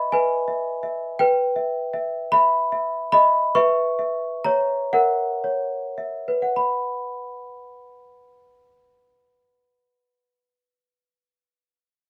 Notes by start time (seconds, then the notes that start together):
Already playing: B4 D#5 E5 B5 C#6
0.12 B4 E5 G#5
0.48 E5
0.83 E5
1.19 B4 G5
1.56 E5
1.93 E5
2.32 E5 B5
2.72 E5
3.12 D#5 E5 B5
3.55 B4 E5 C#6
3.99 E5
4.44 C#5 A#5
4.93 A#4 E5 F#5
5.44 C#5
5.98 E5
6.28 B4
6.42 F#5
6.56 B5